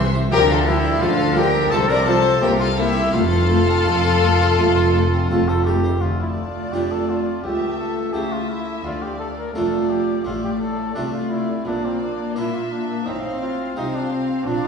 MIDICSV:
0, 0, Header, 1, 8, 480
1, 0, Start_track
1, 0, Key_signature, -1, "major"
1, 0, Tempo, 701754
1, 214, Time_signature, 4, 2, 24, 8
1, 1654, Tempo, 718563
1, 4059, Key_signature, -1, "minor"
1, 4534, Tempo, 703400
1, 9957, End_track
2, 0, Start_track
2, 0, Title_t, "Violin section"
2, 0, Program_c, 0, 48
2, 0, Note_on_c, 0, 84, 126
2, 78, Note_off_c, 0, 84, 0
2, 213, Note_on_c, 0, 79, 121
2, 325, Note_off_c, 0, 79, 0
2, 338, Note_on_c, 0, 77, 97
2, 444, Note_on_c, 0, 76, 95
2, 455, Note_off_c, 0, 77, 0
2, 684, Note_on_c, 0, 77, 106
2, 688, Note_off_c, 0, 76, 0
2, 925, Note_on_c, 0, 79, 111
2, 928, Note_off_c, 0, 77, 0
2, 1167, Note_on_c, 0, 81, 109
2, 1168, Note_off_c, 0, 79, 0
2, 1216, Note_off_c, 0, 81, 0
2, 1294, Note_on_c, 0, 82, 93
2, 1411, Note_off_c, 0, 82, 0
2, 1412, Note_on_c, 0, 81, 99
2, 1654, Note_off_c, 0, 81, 0
2, 1656, Note_on_c, 0, 79, 106
2, 1703, Note_off_c, 0, 79, 0
2, 1786, Note_on_c, 0, 77, 97
2, 1889, Note_on_c, 0, 76, 110
2, 1897, Note_off_c, 0, 77, 0
2, 2130, Note_on_c, 0, 77, 102
2, 2133, Note_off_c, 0, 76, 0
2, 3818, Note_off_c, 0, 77, 0
2, 4060, Note_on_c, 0, 81, 48
2, 4989, Note_off_c, 0, 81, 0
2, 5011, Note_on_c, 0, 81, 44
2, 5472, Note_off_c, 0, 81, 0
2, 5480, Note_on_c, 0, 81, 43
2, 5960, Note_off_c, 0, 81, 0
2, 5965, Note_on_c, 0, 77, 43
2, 6439, Note_off_c, 0, 77, 0
2, 6447, Note_on_c, 0, 77, 47
2, 6920, Note_off_c, 0, 77, 0
2, 6928, Note_on_c, 0, 77, 41
2, 7401, Note_off_c, 0, 77, 0
2, 7411, Note_on_c, 0, 77, 43
2, 7877, Note_off_c, 0, 77, 0
2, 7885, Note_on_c, 0, 77, 47
2, 8832, Note_off_c, 0, 77, 0
2, 8842, Note_on_c, 0, 77, 47
2, 9319, Note_off_c, 0, 77, 0
2, 9334, Note_on_c, 0, 77, 45
2, 9803, Note_off_c, 0, 77, 0
2, 9809, Note_on_c, 0, 82, 48
2, 9957, Note_off_c, 0, 82, 0
2, 9957, End_track
3, 0, Start_track
3, 0, Title_t, "Violin section"
3, 0, Program_c, 1, 48
3, 0, Note_on_c, 1, 76, 107
3, 76, Note_off_c, 1, 76, 0
3, 215, Note_on_c, 1, 70, 125
3, 326, Note_off_c, 1, 70, 0
3, 349, Note_on_c, 1, 69, 93
3, 460, Note_on_c, 1, 67, 85
3, 461, Note_off_c, 1, 69, 0
3, 695, Note_off_c, 1, 67, 0
3, 703, Note_on_c, 1, 69, 91
3, 937, Note_off_c, 1, 69, 0
3, 939, Note_on_c, 1, 70, 94
3, 1175, Note_on_c, 1, 72, 100
3, 1176, Note_off_c, 1, 70, 0
3, 1294, Note_off_c, 1, 72, 0
3, 1304, Note_on_c, 1, 74, 93
3, 1414, Note_on_c, 1, 72, 100
3, 1416, Note_off_c, 1, 74, 0
3, 1650, Note_off_c, 1, 72, 0
3, 1653, Note_on_c, 1, 70, 88
3, 1772, Note_off_c, 1, 70, 0
3, 1777, Note_on_c, 1, 69, 80
3, 1895, Note_off_c, 1, 69, 0
3, 1904, Note_on_c, 1, 67, 91
3, 2141, Note_off_c, 1, 67, 0
3, 2144, Note_on_c, 1, 69, 113
3, 3826, Note_off_c, 1, 69, 0
3, 4067, Note_on_c, 1, 74, 48
3, 4993, Note_off_c, 1, 74, 0
3, 5021, Note_on_c, 1, 76, 43
3, 5487, Note_off_c, 1, 76, 0
3, 5495, Note_on_c, 1, 76, 46
3, 5968, Note_off_c, 1, 76, 0
3, 5980, Note_on_c, 1, 74, 48
3, 6449, Note_off_c, 1, 74, 0
3, 6457, Note_on_c, 1, 74, 43
3, 6928, Note_off_c, 1, 74, 0
3, 6937, Note_on_c, 1, 74, 40
3, 7397, Note_off_c, 1, 74, 0
3, 7405, Note_on_c, 1, 74, 42
3, 7881, Note_off_c, 1, 74, 0
3, 7892, Note_on_c, 1, 74, 52
3, 8366, Note_off_c, 1, 74, 0
3, 8381, Note_on_c, 1, 76, 44
3, 8849, Note_off_c, 1, 76, 0
3, 8863, Note_on_c, 1, 77, 45
3, 9331, Note_off_c, 1, 77, 0
3, 9339, Note_on_c, 1, 77, 43
3, 9806, Note_off_c, 1, 77, 0
3, 9825, Note_on_c, 1, 77, 50
3, 9957, Note_off_c, 1, 77, 0
3, 9957, End_track
4, 0, Start_track
4, 0, Title_t, "Trumpet"
4, 0, Program_c, 2, 56
4, 0, Note_on_c, 2, 72, 114
4, 78, Note_off_c, 2, 72, 0
4, 220, Note_on_c, 2, 67, 112
4, 273, Note_off_c, 2, 67, 0
4, 338, Note_on_c, 2, 65, 82
4, 459, Note_on_c, 2, 64, 99
4, 469, Note_off_c, 2, 65, 0
4, 691, Note_on_c, 2, 65, 91
4, 702, Note_off_c, 2, 64, 0
4, 931, Note_off_c, 2, 65, 0
4, 935, Note_on_c, 2, 67, 91
4, 1169, Note_on_c, 2, 69, 101
4, 1179, Note_off_c, 2, 67, 0
4, 1292, Note_on_c, 2, 70, 89
4, 1303, Note_off_c, 2, 69, 0
4, 1408, Note_off_c, 2, 70, 0
4, 1413, Note_on_c, 2, 69, 93
4, 1649, Note_off_c, 2, 69, 0
4, 1655, Note_on_c, 2, 67, 88
4, 1771, Note_off_c, 2, 67, 0
4, 1775, Note_on_c, 2, 65, 88
4, 1828, Note_off_c, 2, 65, 0
4, 1890, Note_on_c, 2, 64, 78
4, 2129, Note_off_c, 2, 64, 0
4, 2134, Note_on_c, 2, 65, 97
4, 3555, Note_off_c, 2, 65, 0
4, 3582, Note_on_c, 2, 65, 84
4, 3703, Note_on_c, 2, 69, 79
4, 3713, Note_off_c, 2, 65, 0
4, 3808, Note_off_c, 2, 69, 0
4, 3812, Note_on_c, 2, 67, 73
4, 4056, Note_on_c, 2, 65, 64
4, 4066, Note_off_c, 2, 67, 0
4, 4176, Note_off_c, 2, 65, 0
4, 4187, Note_on_c, 2, 64, 55
4, 4238, Note_off_c, 2, 64, 0
4, 4294, Note_on_c, 2, 65, 56
4, 4531, Note_on_c, 2, 67, 60
4, 4541, Note_off_c, 2, 65, 0
4, 4662, Note_on_c, 2, 69, 52
4, 4672, Note_off_c, 2, 67, 0
4, 4784, Note_on_c, 2, 65, 57
4, 4794, Note_off_c, 2, 69, 0
4, 5012, Note_off_c, 2, 65, 0
4, 5016, Note_on_c, 2, 67, 60
4, 5249, Note_off_c, 2, 67, 0
4, 5253, Note_on_c, 2, 69, 61
4, 5489, Note_on_c, 2, 67, 63
4, 5499, Note_off_c, 2, 69, 0
4, 5623, Note_on_c, 2, 65, 57
4, 5633, Note_off_c, 2, 67, 0
4, 5738, Note_off_c, 2, 65, 0
4, 5742, Note_on_c, 2, 64, 56
4, 5974, Note_off_c, 2, 64, 0
4, 5978, Note_on_c, 2, 65, 63
4, 6099, Note_on_c, 2, 67, 57
4, 6109, Note_off_c, 2, 65, 0
4, 6211, Note_off_c, 2, 67, 0
4, 6215, Note_on_c, 2, 69, 58
4, 6270, Note_off_c, 2, 69, 0
4, 6338, Note_on_c, 2, 70, 62
4, 6443, Note_off_c, 2, 70, 0
4, 6447, Note_on_c, 2, 69, 56
4, 6696, Note_on_c, 2, 67, 62
4, 6706, Note_off_c, 2, 69, 0
4, 6932, Note_off_c, 2, 67, 0
4, 6936, Note_on_c, 2, 65, 61
4, 6990, Note_off_c, 2, 65, 0
4, 7064, Note_on_c, 2, 67, 61
4, 7116, Note_off_c, 2, 67, 0
4, 7172, Note_on_c, 2, 69, 61
4, 7404, Note_off_c, 2, 69, 0
4, 7408, Note_on_c, 2, 62, 62
4, 7464, Note_off_c, 2, 62, 0
4, 7535, Note_on_c, 2, 65, 57
4, 7655, Note_on_c, 2, 64, 56
4, 7665, Note_off_c, 2, 65, 0
4, 7896, Note_off_c, 2, 64, 0
4, 7902, Note_on_c, 2, 62, 66
4, 8032, Note_on_c, 2, 60, 56
4, 8042, Note_off_c, 2, 62, 0
4, 8141, Note_off_c, 2, 60, 0
4, 8145, Note_on_c, 2, 62, 59
4, 8382, Note_on_c, 2, 64, 59
4, 8392, Note_off_c, 2, 62, 0
4, 8507, Note_on_c, 2, 65, 53
4, 8517, Note_off_c, 2, 64, 0
4, 8619, Note_on_c, 2, 62, 60
4, 8629, Note_off_c, 2, 65, 0
4, 8853, Note_on_c, 2, 63, 61
4, 8863, Note_off_c, 2, 62, 0
4, 9090, Note_off_c, 2, 63, 0
4, 9094, Note_on_c, 2, 65, 57
4, 9330, Note_off_c, 2, 65, 0
4, 9337, Note_on_c, 2, 63, 71
4, 9465, Note_on_c, 2, 62, 60
4, 9475, Note_off_c, 2, 63, 0
4, 9572, Note_off_c, 2, 62, 0
4, 9576, Note_on_c, 2, 60, 60
4, 9817, Note_on_c, 2, 62, 71
4, 9827, Note_off_c, 2, 60, 0
4, 9953, Note_off_c, 2, 62, 0
4, 9957, End_track
5, 0, Start_track
5, 0, Title_t, "Harpsichord"
5, 0, Program_c, 3, 6
5, 0, Note_on_c, 3, 48, 70
5, 0, Note_on_c, 3, 70, 53
5, 96, Note_off_c, 3, 70, 0
5, 96, Note_on_c, 3, 72, 65
5, 142, Note_off_c, 3, 48, 0
5, 213, Note_on_c, 3, 50, 71
5, 215, Note_off_c, 3, 72, 0
5, 341, Note_on_c, 3, 69, 55
5, 456, Note_on_c, 3, 65, 64
5, 463, Note_off_c, 3, 69, 0
5, 578, Note_on_c, 3, 57, 57
5, 580, Note_off_c, 3, 65, 0
5, 617, Note_off_c, 3, 50, 0
5, 695, Note_on_c, 3, 50, 72
5, 695, Note_on_c, 3, 65, 60
5, 701, Note_off_c, 3, 57, 0
5, 819, Note_off_c, 3, 65, 0
5, 820, Note_on_c, 3, 69, 64
5, 935, Note_on_c, 3, 67, 52
5, 942, Note_off_c, 3, 69, 0
5, 1054, Note_off_c, 3, 67, 0
5, 1058, Note_on_c, 3, 69, 65
5, 1098, Note_off_c, 3, 50, 0
5, 1174, Note_on_c, 3, 48, 75
5, 1175, Note_off_c, 3, 69, 0
5, 1288, Note_on_c, 3, 72, 62
5, 1408, Note_on_c, 3, 65, 57
5, 1417, Note_off_c, 3, 72, 0
5, 1527, Note_on_c, 3, 60, 53
5, 1537, Note_off_c, 3, 65, 0
5, 1579, Note_off_c, 3, 48, 0
5, 1648, Note_on_c, 3, 48, 61
5, 1651, Note_off_c, 3, 60, 0
5, 1768, Note_on_c, 3, 70, 62
5, 1887, Note_on_c, 3, 60, 60
5, 1896, Note_off_c, 3, 70, 0
5, 2015, Note_on_c, 3, 58, 51
5, 2017, Note_off_c, 3, 60, 0
5, 2057, Note_off_c, 3, 48, 0
5, 2129, Note_on_c, 3, 41, 62
5, 2136, Note_off_c, 3, 58, 0
5, 2252, Note_on_c, 3, 72, 52
5, 2376, Note_on_c, 3, 65, 55
5, 2381, Note_off_c, 3, 72, 0
5, 2493, Note_on_c, 3, 60, 51
5, 2504, Note_off_c, 3, 65, 0
5, 2542, Note_off_c, 3, 41, 0
5, 2614, Note_on_c, 3, 41, 60
5, 2617, Note_on_c, 3, 69, 57
5, 2623, Note_off_c, 3, 60, 0
5, 2734, Note_on_c, 3, 72, 57
5, 2745, Note_off_c, 3, 69, 0
5, 2863, Note_on_c, 3, 70, 50
5, 2864, Note_off_c, 3, 72, 0
5, 2983, Note_off_c, 3, 70, 0
5, 2983, Note_on_c, 3, 72, 62
5, 3025, Note_off_c, 3, 41, 0
5, 3104, Note_on_c, 3, 41, 63
5, 3108, Note_on_c, 3, 57, 57
5, 3109, Note_off_c, 3, 72, 0
5, 3220, Note_on_c, 3, 72, 57
5, 3232, Note_off_c, 3, 57, 0
5, 3347, Note_off_c, 3, 72, 0
5, 3350, Note_on_c, 3, 65, 52
5, 3468, Note_on_c, 3, 60, 49
5, 3472, Note_off_c, 3, 65, 0
5, 3508, Note_off_c, 3, 41, 0
5, 3585, Note_on_c, 3, 41, 63
5, 3587, Note_on_c, 3, 69, 58
5, 3591, Note_off_c, 3, 60, 0
5, 3706, Note_on_c, 3, 72, 66
5, 3710, Note_off_c, 3, 69, 0
5, 3824, Note_on_c, 3, 70, 46
5, 3830, Note_off_c, 3, 72, 0
5, 3939, Note_on_c, 3, 72, 57
5, 3942, Note_off_c, 3, 70, 0
5, 3987, Note_off_c, 3, 41, 0
5, 4059, Note_off_c, 3, 72, 0
5, 4059, Note_on_c, 3, 38, 37
5, 4508, Note_off_c, 3, 38, 0
5, 4536, Note_on_c, 3, 62, 30
5, 4538, Note_on_c, 3, 41, 33
5, 4540, Note_on_c, 3, 65, 32
5, 4882, Note_off_c, 3, 62, 0
5, 4885, Note_off_c, 3, 65, 0
5, 4991, Note_off_c, 3, 41, 0
5, 5017, Note_on_c, 3, 37, 37
5, 5469, Note_off_c, 3, 37, 0
5, 5494, Note_on_c, 3, 49, 33
5, 5497, Note_on_c, 3, 64, 32
5, 5843, Note_off_c, 3, 64, 0
5, 5950, Note_off_c, 3, 49, 0
5, 5977, Note_on_c, 3, 38, 36
5, 6430, Note_off_c, 3, 38, 0
5, 6460, Note_on_c, 3, 57, 33
5, 6460, Note_on_c, 3, 62, 28
5, 6461, Note_on_c, 3, 41, 37
5, 6464, Note_on_c, 3, 65, 33
5, 6804, Note_off_c, 3, 62, 0
5, 6805, Note_off_c, 3, 57, 0
5, 6807, Note_off_c, 3, 65, 0
5, 6912, Note_off_c, 3, 41, 0
5, 6934, Note_on_c, 3, 57, 34
5, 6935, Note_on_c, 3, 45, 37
5, 7387, Note_off_c, 3, 45, 0
5, 7409, Note_off_c, 3, 57, 0
5, 7417, Note_on_c, 3, 48, 39
5, 7417, Note_on_c, 3, 57, 32
5, 7420, Note_on_c, 3, 62, 29
5, 7421, Note_on_c, 3, 65, 33
5, 7762, Note_off_c, 3, 57, 0
5, 7764, Note_off_c, 3, 62, 0
5, 7765, Note_off_c, 3, 65, 0
5, 7869, Note_off_c, 3, 48, 0
5, 7893, Note_on_c, 3, 46, 41
5, 8349, Note_off_c, 3, 46, 0
5, 8376, Note_on_c, 3, 62, 31
5, 8377, Note_on_c, 3, 58, 37
5, 8379, Note_on_c, 3, 65, 33
5, 8722, Note_off_c, 3, 62, 0
5, 8724, Note_off_c, 3, 65, 0
5, 8830, Note_off_c, 3, 58, 0
5, 8854, Note_on_c, 3, 45, 39
5, 9307, Note_off_c, 3, 45, 0
5, 9334, Note_on_c, 3, 48, 38
5, 9336, Note_on_c, 3, 60, 32
5, 9337, Note_on_c, 3, 65, 35
5, 9680, Note_off_c, 3, 60, 0
5, 9681, Note_off_c, 3, 65, 0
5, 9786, Note_off_c, 3, 48, 0
5, 9815, Note_on_c, 3, 46, 36
5, 9957, Note_off_c, 3, 46, 0
5, 9957, End_track
6, 0, Start_track
6, 0, Title_t, "Viola section"
6, 0, Program_c, 4, 48
6, 210, Note_on_c, 4, 53, 80
6, 265, Note_off_c, 4, 53, 0
6, 455, Note_on_c, 4, 53, 69
6, 510, Note_off_c, 4, 53, 0
6, 695, Note_on_c, 4, 53, 74
6, 749, Note_off_c, 4, 53, 0
6, 924, Note_on_c, 4, 53, 62
6, 978, Note_off_c, 4, 53, 0
6, 1169, Note_on_c, 4, 53, 72
6, 1224, Note_off_c, 4, 53, 0
6, 1412, Note_on_c, 4, 53, 68
6, 1466, Note_off_c, 4, 53, 0
6, 1654, Note_on_c, 4, 58, 69
6, 1708, Note_off_c, 4, 58, 0
6, 1891, Note_on_c, 4, 58, 71
6, 1945, Note_off_c, 4, 58, 0
6, 2134, Note_on_c, 4, 57, 69
6, 2188, Note_off_c, 4, 57, 0
6, 2373, Note_on_c, 4, 57, 70
6, 2427, Note_off_c, 4, 57, 0
6, 2613, Note_on_c, 4, 57, 67
6, 2666, Note_off_c, 4, 57, 0
6, 2862, Note_on_c, 4, 57, 65
6, 2916, Note_off_c, 4, 57, 0
6, 3110, Note_on_c, 4, 57, 65
6, 3164, Note_off_c, 4, 57, 0
6, 3342, Note_on_c, 4, 57, 66
6, 3395, Note_off_c, 4, 57, 0
6, 3588, Note_on_c, 4, 57, 70
6, 3641, Note_off_c, 4, 57, 0
6, 3823, Note_on_c, 4, 57, 75
6, 3876, Note_off_c, 4, 57, 0
6, 4061, Note_on_c, 4, 57, 41
6, 4990, Note_off_c, 4, 57, 0
6, 5014, Note_on_c, 4, 57, 45
6, 5483, Note_off_c, 4, 57, 0
6, 5491, Note_on_c, 4, 57, 41
6, 5961, Note_off_c, 4, 57, 0
6, 5969, Note_on_c, 4, 57, 42
6, 6444, Note_off_c, 4, 57, 0
6, 6458, Note_on_c, 4, 57, 44
6, 6928, Note_off_c, 4, 57, 0
6, 6938, Note_on_c, 4, 57, 40
6, 7403, Note_off_c, 4, 57, 0
6, 7412, Note_on_c, 4, 57, 41
6, 7885, Note_off_c, 4, 57, 0
6, 7898, Note_on_c, 4, 58, 45
6, 8858, Note_off_c, 4, 58, 0
6, 8860, Note_on_c, 4, 60, 44
6, 9328, Note_off_c, 4, 60, 0
6, 9336, Note_on_c, 4, 60, 44
6, 9804, Note_off_c, 4, 60, 0
6, 9807, Note_on_c, 4, 62, 45
6, 9957, Note_off_c, 4, 62, 0
6, 9957, End_track
7, 0, Start_track
7, 0, Title_t, "Cello section"
7, 0, Program_c, 5, 48
7, 0, Note_on_c, 5, 48, 91
7, 158, Note_off_c, 5, 48, 0
7, 216, Note_on_c, 5, 50, 100
7, 637, Note_off_c, 5, 50, 0
7, 696, Note_on_c, 5, 50, 93
7, 1117, Note_off_c, 5, 50, 0
7, 1173, Note_on_c, 5, 48, 96
7, 1598, Note_off_c, 5, 48, 0
7, 1657, Note_on_c, 5, 48, 85
7, 2079, Note_off_c, 5, 48, 0
7, 2139, Note_on_c, 5, 41, 94
7, 2564, Note_off_c, 5, 41, 0
7, 2623, Note_on_c, 5, 41, 87
7, 3047, Note_off_c, 5, 41, 0
7, 3099, Note_on_c, 5, 41, 90
7, 3524, Note_off_c, 5, 41, 0
7, 3583, Note_on_c, 5, 41, 90
7, 4004, Note_off_c, 5, 41, 0
7, 4060, Note_on_c, 5, 38, 49
7, 4508, Note_off_c, 5, 38, 0
7, 4533, Note_on_c, 5, 41, 44
7, 4988, Note_off_c, 5, 41, 0
7, 5017, Note_on_c, 5, 37, 50
7, 5469, Note_off_c, 5, 37, 0
7, 5494, Note_on_c, 5, 49, 48
7, 5950, Note_off_c, 5, 49, 0
7, 5976, Note_on_c, 5, 38, 54
7, 6430, Note_off_c, 5, 38, 0
7, 6460, Note_on_c, 5, 41, 46
7, 6911, Note_off_c, 5, 41, 0
7, 6936, Note_on_c, 5, 45, 54
7, 7387, Note_off_c, 5, 45, 0
7, 7419, Note_on_c, 5, 48, 51
7, 7871, Note_off_c, 5, 48, 0
7, 7900, Note_on_c, 5, 46, 60
7, 8352, Note_off_c, 5, 46, 0
7, 8373, Note_on_c, 5, 58, 49
7, 8827, Note_off_c, 5, 58, 0
7, 8858, Note_on_c, 5, 45, 55
7, 9309, Note_off_c, 5, 45, 0
7, 9335, Note_on_c, 5, 48, 52
7, 9786, Note_off_c, 5, 48, 0
7, 9808, Note_on_c, 5, 46, 57
7, 9957, Note_off_c, 5, 46, 0
7, 9957, End_track
8, 0, Start_track
8, 0, Title_t, "Double bass section"
8, 0, Program_c, 6, 48
8, 0, Note_on_c, 6, 36, 96
8, 161, Note_off_c, 6, 36, 0
8, 214, Note_on_c, 6, 38, 94
8, 636, Note_off_c, 6, 38, 0
8, 695, Note_on_c, 6, 38, 88
8, 1117, Note_off_c, 6, 38, 0
8, 1174, Note_on_c, 6, 36, 84
8, 1598, Note_off_c, 6, 36, 0
8, 1656, Note_on_c, 6, 36, 86
8, 2079, Note_off_c, 6, 36, 0
8, 2139, Note_on_c, 6, 29, 87
8, 2565, Note_off_c, 6, 29, 0
8, 2622, Note_on_c, 6, 29, 75
8, 3047, Note_off_c, 6, 29, 0
8, 3107, Note_on_c, 6, 29, 83
8, 3528, Note_off_c, 6, 29, 0
8, 3583, Note_on_c, 6, 29, 86
8, 4004, Note_off_c, 6, 29, 0
8, 4060, Note_on_c, 6, 38, 50
8, 4508, Note_off_c, 6, 38, 0
8, 4537, Note_on_c, 6, 29, 48
8, 4990, Note_off_c, 6, 29, 0
8, 5017, Note_on_c, 6, 37, 49
8, 5469, Note_off_c, 6, 37, 0
8, 5500, Note_on_c, 6, 37, 47
8, 5953, Note_off_c, 6, 37, 0
8, 5981, Note_on_c, 6, 38, 53
8, 6433, Note_off_c, 6, 38, 0
8, 6457, Note_on_c, 6, 29, 46
8, 6910, Note_off_c, 6, 29, 0
8, 6942, Note_on_c, 6, 33, 51
8, 7391, Note_off_c, 6, 33, 0
8, 7418, Note_on_c, 6, 36, 47
8, 7870, Note_off_c, 6, 36, 0
8, 7901, Note_on_c, 6, 34, 56
8, 8353, Note_off_c, 6, 34, 0
8, 8380, Note_on_c, 6, 46, 53
8, 8831, Note_off_c, 6, 46, 0
8, 8857, Note_on_c, 6, 33, 52
8, 9309, Note_off_c, 6, 33, 0
8, 9336, Note_on_c, 6, 36, 56
8, 9787, Note_off_c, 6, 36, 0
8, 9815, Note_on_c, 6, 34, 59
8, 9957, Note_off_c, 6, 34, 0
8, 9957, End_track
0, 0, End_of_file